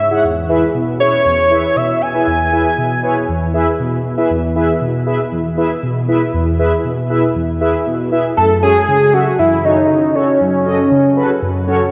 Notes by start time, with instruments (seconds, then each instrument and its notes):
Already playing: analog polysynth G#2, analog synth lead E5
0.11 analog polysynth E4 G#4 C#5 F#5
0.24 analog polysynth E2
0.49 analog polysynth E4 G#4 B4 E5
0.75 analog polysynth B2
1.00 analog polysynth E4 G#4 B4 E5, analog synth lead C#5
1.25 analog polysynth E2
1.51 analog polysynth E4 G#4 B4 E5
1.76 analog polysynth B2, analog synth lead E5
2.02 analog polysynth B4 E5, analog synth lead G#5
2.14 analog polysynth E4 G#4 B4 E5
2.27 analog polysynth E2
2.52 analog polysynth E4 G#4 B4 E5
2.78 analog polysynth B2
3.03 analog polysynth E4 G#4 B4 C#5
3.29 analog polysynth E2
3.54 analog polysynth E4 G#4 B4 E5
3.80 analog polysynth B2
4.05 analog polysynth B4 E5
4.18 analog polysynth E4 G#4 B4 E5
4.30 analog polysynth E2
4.56 analog polysynth E4 G#4 B4 E5
4.81 analog polysynth B2
5.07 analog polysynth E4 G#4 B4 E5
5.32 analog polysynth E2
5.57 analog polysynth E4 G#4 B4 E5
5.83 analog polysynth B2
6.08 analog polysynth E4 G#4 B4 E5
6.34 analog polysynth E2
6.59 analog polysynth E4 G#4 B4 E5
6.85 analog polysynth B2
7.10 analog polysynth E4 G#4 B4 E5
7.35 analog polysynth E2
7.61 analog polysynth E4 G#4 B4 E5
7.86 analog polysynth B2
8.12 analog polysynth E4 G#4 B4 E5
8.37 analog polysynth F#2, analog synth lead A4
8.63 analog polysynth C#4 F#4 A4 C#5, analog synth lead G#4
8.88 analog polysynth C#3
9.13 analog polysynth C#4 F#4 A4 E5, analog synth lead F#4
9.39 analog polysynth F#2, analog synth lead E4
9.64 analog polysynth C#4 F#4 A4 C#5, analog synth lead D#4
9.90 analog polysynth C#3
10.15 analog polysynth C#4 F#4 A4 C#5, analog synth lead C#4
10.40 analog polysynth F#2
10.66 analog polysynth C#4 F#4 A4 D#5
10.91 analog polysynth C#3
11.17 analog polysynth C#4 F#4 A4 B4
11.42 analog polysynth F#2
11.67 analog polysynth C#4 F#4 A4 C#5